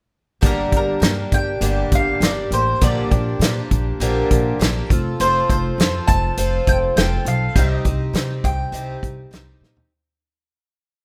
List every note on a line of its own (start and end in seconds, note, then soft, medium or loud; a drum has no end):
0.41 0.63 G1 medium
0.41 1.02 G2 medium
0.41 1.02 D3 medium
0.41 1.00 G3 medium
0.41 1.01 A#3 medium
0.41 1.01 D4 medium
0.41 1.01 G4 medium
0.41 kick loud
0.41 closed hi-hat medium
0.46 0.75 A#4 medium
0.72 0.93 G1 medium
0.72 kick medium
0.72 closed hi-hat soft
0.77 1.36 A#4 medium
1.00 1.22 G2 medium
1.00 1.60 G3 soft
1.00 1.61 A#3 medium
1.00 1.61 D4 medium
1.00 1.61 G4 medium
1.00 snare loud
1.00 closed hi-hat medium
1.32 1.53 G1 medium
1.32 1.95 G5 loud
1.32 kick medium
1.32 closed hi-hat medium
1.61 1.82 G1 medium
1.61 2.21 G2 medium
1.61 2.21 D3 medium
1.61 2.20 G3 medium
1.61 2.21 A#3 medium
1.61 2.21 D4 medium
1.61 2.21 G4 medium
1.61 closed hi-hat medium
1.92 2.12 G1 medium
1.92 2.24 F5 medium
1.92 kick medium
1.92 closed hi-hat medium
2.20 2.41 G1 medium
2.20 2.51 G3 medium
2.20 2.51 A#3 soft
2.20 2.51 D4 medium
2.20 2.50 G4 soft
2.20 2.53 D5 medium
2.20 snare loud
2.20 closed hi-hat medium
2.51 2.72 A1 medium
2.51 2.81 G3 soft
2.51 2.80 A#3 soft
2.51 2.80 D4 soft
2.51 2.81 G4 soft
2.51 2.83 C5 medium
2.51 closed hi-hat medium
2.81 3.02 A#1 medium
2.81 3.11 A#2 medium
2.81 3.11 D3 medium
2.81 3.11 F3 medium
2.81 3.10 A#3 medium
2.81 3.10 D4 medium
2.81 3.10 G4 medium
2.81 3.97 D5 medium
2.81 kick medium
2.81 closed hi-hat medium
3.11 3.32 A#1 medium
3.11 3.40 F3 soft
3.11 3.40 A#3 soft
3.11 3.41 D4 soft
3.11 3.41 G4 soft
3.11 kick medium
3.11 closed hi-hat soft
3.39 3.60 A#2 medium
3.39 4.01 F3 medium
3.39 4.00 A#3 medium
3.39 4.01 D4 soft
3.39 4.01 G4 medium
3.39 snare loud
3.39 closed hi-hat medium
3.71 3.92 A#1 medium
3.71 kick medium
3.71 closed hi-hat medium
4.00 4.20 A#1 medium
4.00 4.60 A#2 medium
4.00 4.60 D3 medium
4.00 4.58 F3 medium
4.00 4.59 A#3 medium
4.00 4.60 D4 medium
4.00 4.60 G4 medium
4.00 closed hi-hat medium
4.31 4.51 A#1 medium
4.31 kick medium
4.31 closed hi-hat medium
4.59 4.80 A#1 medium
4.59 4.89 F3 medium
4.59 4.90 A#3 medium
4.59 4.90 D4 medium
4.59 4.90 G4 medium
4.59 snare loud
4.59 closed hi-hat medium
4.90 5.10 F1 medium
4.90 5.20 C4 soft
4.90 5.20 F4 soft
4.90 5.20 A4 soft
4.90 kick medium
4.90 closed hi-hat soft
5.20 5.40 F1 medium
5.20 5.79 F3 medium
5.20 5.80 C4 medium
5.20 5.79 F4 medium
5.20 5.79 A4 medium
5.20 5.47 C5 medium
5.20 closed hi-hat medium
5.50 5.70 F1 medium
5.50 6.10 C5 medium
5.50 kick medium
5.50 closed hi-hat medium
5.78 5.98 F2 medium
5.78 6.37 F3 medium
5.78 6.37 C4 medium
5.78 6.38 F4 medium
5.78 snare loud
5.78 closed hi-hat medium
5.82 6.38 A4 medium
6.08 6.28 F1 medium
6.08 6.63 A5 loud
6.08 kick medium
6.08 closed hi-hat medium
6.37 6.58 F1 medium
6.37 6.96 F3 medium
6.37 6.97 C4 medium
6.37 6.97 F4 medium
6.37 6.97 A4 medium
6.37 closed hi-hat medium
6.67 6.87 F1 medium
6.67 6.76 G5 medium
6.67 kick medium
6.67 closed hi-hat medium
6.96 7.17 F1 medium
6.96 7.56 F3 medium
6.96 7.56 C4 soft
6.96 7.56 F4 medium
6.96 7.56 A4 medium
6.96 7.27 G5 medium
6.96 snare medium
6.96 closed hi-hat medium
7.25 7.46 B1 medium
7.25 7.57 F5 medium
7.25 closed hi-hat medium
7.56 7.76 C2 medium
7.56 7.85 C3 medium
7.56 7.85 G3 medium
7.56 7.85 C4 medium
7.56 7.85 D#4 medium
7.56 7.83 G4 medium
7.56 8.12 D#5 medium
7.56 kick medium
7.56 closed hi-hat medium
7.85 8.05 C2 medium
7.85 8.13 C4 soft
7.85 8.13 D#4 soft
7.85 8.14 G4 soft
7.85 kick medium
7.85 closed hi-hat medium
8.13 8.34 C3 medium
8.13 8.72 G3 medium
8.13 8.72 C4 medium
8.13 8.72 D#4 medium
8.13 8.72 G4 medium
8.13 snare medium
8.13 closed hi-hat medium
8.44 8.64 C2 medium
8.44 9.29 G5 loud
8.44 kick medium
8.44 closed hi-hat medium
8.72 8.93 C2 medium
8.72 9.32 C3 medium
8.72 9.30 G3 medium
8.72 9.30 C4 medium
8.72 9.31 D#4 medium
8.72 9.31 G4 medium
8.72 closed hi-hat medium
9.03 9.23 C2 medium
9.03 kick medium
9.03 closed hi-hat medium
9.31 9.52 C2 medium
9.31 9.90 G3 medium
9.31 9.91 C4 medium
9.31 9.91 D#4 medium
9.31 9.91 G4 medium
9.31 snare loud
9.31 closed hi-hat medium
9.61 9.81 A#2 medium
9.61 snare medium
9.77 floor tom medium